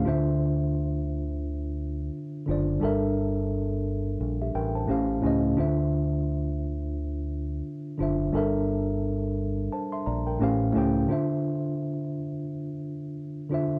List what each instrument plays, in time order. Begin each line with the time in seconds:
0.04 fingered electric bass D2, tine electric piano D3 D4 F4 C5
0.09 tine electric piano E5
2.46 fingered electric bass F#1, tine electric piano D3 D4 F4 C5
2.51 tine electric piano D5
2.80 fingered electric bass G1, tine electric piano G3 D4 A4 A#4
2.85 tine electric piano E5
4.20 fingered electric bass A#1
4.42 tine electric piano G4 E5
4.55 fingered electric bass A1, tine electric piano A#4 G5
4.75 tine electric piano C5 A5
4.86 fingered electric bass A1, tine electric piano A2 A3 C#4 G4 C5
4.91 tine electric piano F5
5.22 fingered electric bass C#2, tine electric piano A2 A3 C#4 G4 C5
5.26 tine electric piano D#5
5.55 fingered electric bass D2, tine electric piano D3 D4 F4 C5
5.60 tine electric piano E5
7.98 fingered electric bass F#1, tine electric piano D3 D4 F4 C5
8.02 tine electric piano E5
8.32 fingered electric bass G1, tine electric piano G3 D4 A4 A#4
8.37 tine electric piano E5
9.72 tine electric piano C5 A5
9.92 tine electric piano E5 C6
10.06 fingered electric bass A#1, tine electric piano D5 A#5
10.27 tine electric piano A#4 G5
10.39 fingered electric bass A1, tine electric piano A2 A3 C#4 G4 C5
10.44 tine electric piano F5
10.73 fingered electric bass C#2, tine electric piano A2 A3 C#4 G4 C5
10.78 tine electric piano G5
11.08 tine electric piano D3 D4 F4 C5
11.12 tine electric piano E5
13.49 tine electric piano D3 D4 F4 C5
13.54 tine electric piano E5